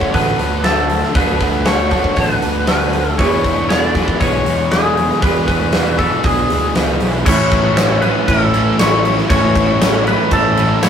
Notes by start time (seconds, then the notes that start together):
Already playing: D3 F#3 A3 B3 D4 F#4 A4 C#5
0.01 kick
0.12 A1 D3 F#3 A3 B3 F#4 A4 B4, kick, open hi-hat
0.17 D4
0.38 D2 B3 D4 F#4 A4, open hi-hat
0.42 A3
0.64 D3 F#3 A3 B3 D4 F#4 A4, snare, open hi-hat
0.90 A3 B3 D4 F#4 A4, open hi-hat
1.03 snare
1.15 D2 D3 F#3 A3 B3 D4 F#4 A4 B4, kick, open hi-hat
1.40 F#4 A4, kick, open hi-hat
1.44 B3
1.65 F#3 B3 F#4 A4 C#5, snare, open hi-hat
1.91 D3 F#3 A3 B3 D4 F#4 A4, kick, open hi-hat
2.04 kick
2.16 A1 D3 F#3 A3 B3 D4 F#4 B4, kick, open hi-hat
2.20 A4
2.42 D2 A3 B3 D4 F#4 A4, open hi-hat
2.67 D3 F#3 A3 B3 D4 F#4 B4, snare, open hi-hat
2.71 A4
2.93 A3 B3 D4 F#4 A4, open hi-hat
3.10 A4
3.18 E2 B2 E3 G#3 B3 D4 C#5, kick, open hi-hat
3.22 E4 G#4
3.44 B3 D4 G#4, kick, open hi-hat
3.69 E3 B3 D4 G#4 C#5, snare, open hi-hat
3.80 D5
3.94 B2 E3 G#3 B3 D4 E4 G#4, kick, open hi-hat
3.99 E3 B3
4.08 kick
4.20 B1 E2 B2 E3 B3 D4 G#4 C#5, kick, open hi-hat
4.45 E2 B2 E3 B3 D4 G#4, open hi-hat
4.71 E2 B2 E3 B3 D4 G#4, snare, open hi-hat
4.96 B2 E3 B3 D4 G#4, open hi-hat
5.10 snare
5.21 E2 B2 E3 G#3 B3 D4 E4 G#4 B4, kick, open hi-hat
5.25 E3
5.47 B3 D4 G#4 B4, kick, open hi-hat
5.72 E3 B3 D4 G#4, snare, open hi-hat
5.98 B2 E3 G#3 B3 D4 E4 G#4 A4, kick, open hi-hat
6.23 B1 E2 B2 E3 B3 D4 G#4, kick, open hi-hat
6.48 D2 B2 E3 B3 D4 G#4, open hi-hat
6.73 C#2 E2 B2 E3 B3 D4 G#4, snare, open hi-hat
6.78 E3
6.99 B1 E3 B3 D4 G#4, open hi-hat
7.03 B2
7.23 A1 A2 E3 A3 C#4 E4 C#5, kick, crash
7.28 E3 A3 C#4 E4
7.50 A3 C#4 E4, kick, crash
7.56 E3
7.76 E3 C#4 E4, snare, tambourine, crash
8.01 E3 A3 C#4 E4 B4, crash
8.26 A1 A2 E3 C#4 E4 A4, kick, crash
8.31 A3
8.53 A2 E3 A3 C#4 E4, crash
8.77 A1 A2 E3 A3 C#4 E4 C#5, snare, tambourine, crash
8.82 A3
9.04 A3 C#4 E4, crash
9.08 E3
9.18 snare
9.29 A1 A2 E3 A3 C#4 E4 C#5, kick, crash
9.33 A3
9.55 E3 A3 C#4 E4, kick, crash
9.80 E3 C#4 E4, snare, tambourine, crash
10.05 E3 A3 C#4 E4 B4, crash
10.31 A1 A2 E3 A3 C#4 E4 A4, kick, crash
10.56 A2 E3 A3 C#4 E4, crash
10.60 E3
10.82 A1 A2 E3 A3 C#4 E4 C#5, snare, tambourine, crash